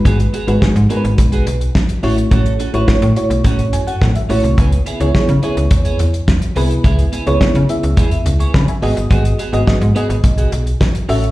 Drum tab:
HH |xxxx-xxxxxxx-xox|xxxx-xxxxxxx-xox|xxxx-xxxxxxx-xox|xxxx-xxxxxxx-xox|
SD |----o-------o---|----o-------o---|----o-------o---|----o-------o---|
BD |o---o---o---o---|o---o---o---o---|o---o---o---o---|o---o---o---o---|

HH |xxxx-xxxxxxx-xox|
SD |----o-------o---|
BD |o---o---o---o---|